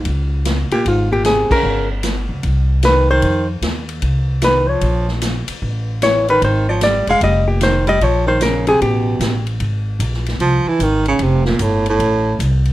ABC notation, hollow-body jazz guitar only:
X:1
M:4/4
L:1/8
Q:"Swing" 1/4=151
K:Fm
V:1 name="Hollow-body jazz guitar"
z3 G F G A B- | B z4 z =B c- | c z4 z _c d- | d z4 z ^c =B |
c d =d f e G c e | d c B A G3 z | z8 | z8 |]